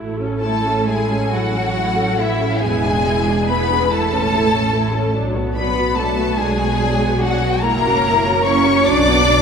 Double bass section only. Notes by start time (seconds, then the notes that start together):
Already playing: A1
1.32 A1
2.63 E1
3.91 A1
5.15 B1
6.39 B1
7.64 F#1
8.86 B1